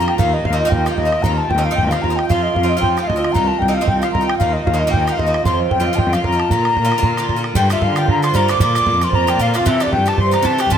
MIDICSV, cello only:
0, 0, Header, 1, 2, 480
1, 0, Start_track
1, 0, Tempo, 262697
1, 347, Time_signature, 4, 2, 24, 8
1, 19694, End_track
2, 0, Start_track
2, 0, Title_t, "Cello"
2, 0, Program_c, 0, 42
2, 0, Note_on_c, 0, 41, 81
2, 252, Note_off_c, 0, 41, 0
2, 353, Note_on_c, 0, 39, 99
2, 734, Note_off_c, 0, 39, 0
2, 830, Note_on_c, 0, 39, 96
2, 1213, Note_off_c, 0, 39, 0
2, 1308, Note_on_c, 0, 39, 98
2, 1691, Note_off_c, 0, 39, 0
2, 1795, Note_on_c, 0, 39, 88
2, 2176, Note_off_c, 0, 39, 0
2, 2272, Note_on_c, 0, 39, 103
2, 2655, Note_off_c, 0, 39, 0
2, 2765, Note_on_c, 0, 39, 106
2, 3143, Note_off_c, 0, 39, 0
2, 3241, Note_on_c, 0, 39, 108
2, 3621, Note_off_c, 0, 39, 0
2, 3737, Note_on_c, 0, 39, 78
2, 4112, Note_off_c, 0, 39, 0
2, 4206, Note_on_c, 0, 41, 83
2, 4586, Note_off_c, 0, 41, 0
2, 4675, Note_on_c, 0, 41, 105
2, 5060, Note_off_c, 0, 41, 0
2, 5162, Note_on_c, 0, 41, 79
2, 5544, Note_off_c, 0, 41, 0
2, 5648, Note_on_c, 0, 38, 75
2, 6028, Note_off_c, 0, 38, 0
2, 6130, Note_on_c, 0, 36, 102
2, 6510, Note_off_c, 0, 36, 0
2, 6615, Note_on_c, 0, 36, 101
2, 6994, Note_off_c, 0, 36, 0
2, 7089, Note_on_c, 0, 36, 99
2, 7471, Note_off_c, 0, 36, 0
2, 7565, Note_on_c, 0, 36, 76
2, 7949, Note_off_c, 0, 36, 0
2, 8050, Note_on_c, 0, 39, 99
2, 8433, Note_off_c, 0, 39, 0
2, 8534, Note_on_c, 0, 39, 101
2, 8915, Note_off_c, 0, 39, 0
2, 9020, Note_on_c, 0, 39, 89
2, 9399, Note_off_c, 0, 39, 0
2, 9497, Note_on_c, 0, 39, 87
2, 9878, Note_off_c, 0, 39, 0
2, 9979, Note_on_c, 0, 41, 93
2, 10360, Note_off_c, 0, 41, 0
2, 10459, Note_on_c, 0, 41, 102
2, 10840, Note_off_c, 0, 41, 0
2, 10935, Note_on_c, 0, 41, 106
2, 11318, Note_off_c, 0, 41, 0
2, 11417, Note_on_c, 0, 41, 80
2, 11799, Note_off_c, 0, 41, 0
2, 11895, Note_on_c, 0, 46, 99
2, 12278, Note_off_c, 0, 46, 0
2, 12380, Note_on_c, 0, 46, 112
2, 12762, Note_off_c, 0, 46, 0
2, 12858, Note_on_c, 0, 46, 82
2, 13240, Note_off_c, 0, 46, 0
2, 13345, Note_on_c, 0, 46, 82
2, 13724, Note_off_c, 0, 46, 0
2, 13815, Note_on_c, 0, 43, 107
2, 14198, Note_off_c, 0, 43, 0
2, 14303, Note_on_c, 0, 43, 104
2, 14408, Note_off_c, 0, 43, 0
2, 14430, Note_on_c, 0, 50, 84
2, 14705, Note_off_c, 0, 50, 0
2, 14780, Note_on_c, 0, 50, 99
2, 15159, Note_off_c, 0, 50, 0
2, 15259, Note_on_c, 0, 43, 89
2, 15638, Note_off_c, 0, 43, 0
2, 15734, Note_on_c, 0, 46, 107
2, 16114, Note_off_c, 0, 46, 0
2, 16212, Note_on_c, 0, 46, 101
2, 16319, Note_off_c, 0, 46, 0
2, 16348, Note_on_c, 0, 41, 93
2, 16620, Note_off_c, 0, 41, 0
2, 16685, Note_on_c, 0, 41, 95
2, 17066, Note_off_c, 0, 41, 0
2, 17163, Note_on_c, 0, 46, 101
2, 17544, Note_off_c, 0, 46, 0
2, 17630, Note_on_c, 0, 48, 107
2, 18015, Note_off_c, 0, 48, 0
2, 18117, Note_on_c, 0, 48, 99
2, 18225, Note_off_c, 0, 48, 0
2, 18243, Note_on_c, 0, 43, 87
2, 18521, Note_off_c, 0, 43, 0
2, 18603, Note_on_c, 0, 43, 95
2, 18980, Note_off_c, 0, 43, 0
2, 19078, Note_on_c, 0, 48, 89
2, 19456, Note_off_c, 0, 48, 0
2, 19558, Note_on_c, 0, 41, 127
2, 19694, Note_off_c, 0, 41, 0
2, 19694, End_track
0, 0, End_of_file